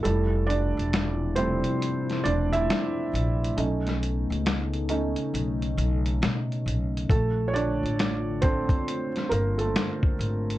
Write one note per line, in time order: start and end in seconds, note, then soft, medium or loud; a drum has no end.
0.03 0.73 F1 medium
0.03 3.53 C3 medium
0.03 3.53 F3 medium
0.03 0.67 G3 soft
0.03 10.58 A3 medium
0.03 0.46 A3 medium
0.03 3.53 E4 medium
0.03 0.68 E4 medium
0.03 0.49 A4 medium
0.03 closed hi-hat medium
0.47 1.33 D4 medium
0.47 1.38 D5 medium
0.47 closed hi-hat medium
0.77 1.61 E1 medium
0.77 closed hi-hat soft
0.93 snare loud
0.93 closed hi-hat medium
1.36 1.76 G3 soft
1.36 1.77 A3 soft
1.36 2.21 C4 medium
1.36 1.77 E4 medium
1.36 2.27 C5 medium
1.36 closed hi-hat medium
1.64 closed hi-hat soft
1.82 closed hi-hat medium
2.09 snare soft
2.09 closed hi-hat soft
2.24 2.66 E1 medium
2.24 2.32 D4 medium
2.24 2.30 D5 medium
2.24 closed hi-hat medium
2.52 3.09 E4 medium
2.52 3.08 E5 loud
2.52 closed hi-hat soft
2.70 snare loud
2.70 closed hi-hat medium
3.13 3.54 A#1 medium
3.13 closed hi-hat medium
3.44 closed hi-hat soft
3.56 4.26 B1 loud
3.56 7.06 C#3 medium
3.56 4.88 A3 soft
3.56 5.31 B3 medium
3.56 4.88 C#4 soft
3.56 7.05 D#4 medium
3.56 4.88 D#4 medium
3.56 closed hi-hat medium
3.87 snare soft
3.87 closed hi-hat soft
4.03 closed hi-hat medium
4.30 5.14 C#2 medium
4.30 closed hi-hat soft
4.46 snare loud
4.46 closed hi-hat medium
4.74 closed hi-hat soft
4.89 5.29 A3 medium
4.89 5.29 C#4 soft
4.89 5.30 D#4 medium
4.89 closed hi-hat medium
5.16 closed hi-hat medium
5.33 5.75 B1 medium
5.33 7.08 C#4 medium
5.33 closed hi-hat medium
5.62 closed hi-hat soft
5.77 6.19 B1 loud
5.77 closed hi-hat medium
6.06 closed hi-hat soft
6.22 6.67 B2 loud
6.22 snare loud
6.22 closed hi-hat medium
6.52 closed hi-hat soft
6.66 7.07 B1 medium
6.66 closed hi-hat medium
6.97 closed hi-hat soft
7.08 7.78 A#1 medium
7.08 10.58 D3 medium
7.08 7.47 A3 medium
7.08 10.58 D4 medium
7.08 10.58 F4 medium
7.08 7.50 A4 medium
7.08 kick loud
7.08 closed hi-hat medium
7.48 7.53 C#5 medium
7.53 8.39 D4 medium
7.53 8.38 D5 medium
7.53 closed hi-hat medium
7.83 8.67 A1 medium
7.83 closed hi-hat soft
7.99 snare loud
7.99 closed hi-hat medium
8.42 9.06 A3 medium
8.42 9.27 C4 medium
8.42 9.06 D4 medium
8.42 9.33 C5 medium
8.42 kick loud
8.42 closed hi-hat medium
8.69 kick medium
8.69 closed hi-hat soft
8.88 closed hi-hat medium
9.16 snare soft
9.16 closed hi-hat soft
9.29 9.72 G1 loud
9.29 9.38 A#3 medium
9.29 9.36 A#4 medium
9.29 closed hi-hat medium
9.58 10.15 A3 medium
9.58 10.14 A4 medium
9.58 closed hi-hat soft
9.76 snare loud
9.76 closed hi-hat medium
10.03 kick medium
10.19 10.58 G#1 medium
10.19 closed hi-hat medium
10.50 closed hi-hat soft